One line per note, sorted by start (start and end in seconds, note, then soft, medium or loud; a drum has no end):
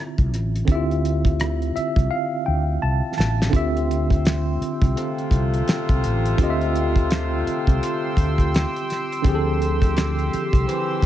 0.00 0.62 D3 medium
0.00 0.63 C4 medium
0.00 0.67 F4 medium
0.00 0.65 G4 medium
0.00 0.65 E5 medium
0.18 0.33 C2 medium
0.18 kick medium
0.18 closed hi-hat soft
0.33 0.61 A1 medium
0.33 cross-stick soft
0.33 closed hi-hat medium
0.56 closed hi-hat soft
0.65 1.71 D2 medium
0.65 3.48 D3 medium
0.65 3.49 C4 medium
0.65 0.76 E4 medium
0.65 kick loud
0.65 closed hi-hat medium
0.70 3.50 G4 medium
0.70 1.74 E5 medium
0.75 3.52 F4 medium
0.91 closed hi-hat soft
1.05 closed hi-hat medium
1.25 kick medium
1.25 closed hi-hat soft
1.40 cross-stick medium
1.40 closed hi-hat medium
1.62 closed hi-hat soft
1.76 2.08 E5 medium
1.76 muted fretless electric bass stroke soft
1.76 closed hi-hat medium
1.96 2.08 C2 medium
1.96 kick medium
1.96 closed hi-hat soft
2.11 2.44 F5 medium
2.46 2.76 D2 medium
2.46 2.79 G5 medium
2.82 3.00 C2 medium
2.82 3.15 A5 medium
3.18 3.47 A1 medium
3.18 3.51 A5 medium
3.18 snare medium
3.42 snare medium
3.50 6.33 D3 medium
3.50 6.34 C4 medium
3.50 6.35 F4 medium
3.50 kick loud
3.54 4.57 D2 loud
3.54 6.36 G4 medium
3.54 11.06 G4 medium
3.54 6.37 E5 medium
3.54 11.06 G5 medium
3.54 11.06 C6 medium
3.54 11.06 E6 medium
3.54 closed hi-hat medium
3.77 closed hi-hat soft
3.91 closed hi-hat medium
4.10 kick medium
4.10 closed hi-hat soft
4.25 finger snap medium
4.25 snare loud
4.25 closed hi-hat medium
4.61 muted fretless electric bass stroke soft
4.61 closed hi-hat medium
4.82 4.93 C2 medium
4.82 kick medium
4.82 closed hi-hat soft
4.96 8.85 C3 medium
4.96 8.85 A3 medium
4.96 8.85 F4 medium
4.96 closed hi-hat medium
5.18 closed hi-hat soft
5.31 5.60 C2 medium
5.31 kick medium
5.31 closed hi-hat medium
5.54 closed hi-hat soft
5.68 finger snap medium
5.68 snare medium
5.68 closed hi-hat medium
5.89 6.01 C2 medium
5.89 kick loud
5.89 closed hi-hat soft
6.04 6.33 A1 medium
6.04 closed hi-hat medium
6.26 closed hi-hat soft
6.36 7.42 D2 loud
6.36 9.19 D3 medium
6.36 9.20 C4 medium
6.36 9.21 F4 medium
6.36 kick loud
6.36 closed hi-hat medium
6.41 9.22 G4 medium
6.41 6.49 D#5 medium
6.50 9.26 E5 medium
6.61 closed hi-hat soft
6.75 closed hi-hat medium
6.96 kick medium
6.96 closed hi-hat soft
7.11 finger snap medium
7.11 snare loud
7.11 closed hi-hat medium
7.47 muted fretless electric bass stroke soft
7.47 closed hi-hat medium
7.67 7.79 C2 medium
7.67 kick medium
7.67 closed hi-hat soft
7.83 closed hi-hat medium
8.17 8.64 D2 medium
8.17 kick medium
8.17 closed hi-hat medium
8.38 kick medium
8.38 closed hi-hat soft
8.54 finger snap medium
8.54 snare medium
8.54 closed hi-hat medium
8.76 closed hi-hat soft
8.90 snare soft
8.90 closed hi-hat medium
9.12 closed hi-hat soft
9.22 10.28 D2 loud
9.22 11.06 D3 medium
9.22 11.06 F3 medium
9.22 11.06 C4 medium
9.22 kick loud
9.22 closed hi-hat medium
9.27 11.06 G4 medium
9.27 9.34 G#4 medium
9.35 11.06 A4 medium
9.62 closed hi-hat medium
9.82 kick medium
9.82 closed hi-hat soft
9.97 finger snap medium
9.97 snare loud
9.97 closed hi-hat medium
10.19 closed hi-hat soft
10.33 muted fretless electric bass stroke medium
10.33 closed hi-hat medium
10.53 10.65 C2 medium
10.53 kick loud
10.53 closed hi-hat soft
10.68 11.06 E3 medium
10.68 11.06 C4 medium
10.68 11.06 G4 medium
10.68 closed hi-hat medium
11.02 11.06 C2 medium
11.02 kick medium